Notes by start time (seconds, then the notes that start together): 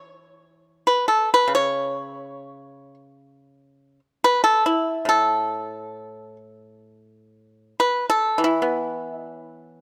Already playing: E3
0.87 B4
1.08 A4
1.34 B4
1.48 C#3
1.55 C#5
4.24 B4
4.44 A4
4.66 E4
5.05 A2 A4
7.80 B4
8.10 A4
8.38 E3
8.44 E4
8.62 B3
9.13 D#4
9.25 D4
9.37 C#4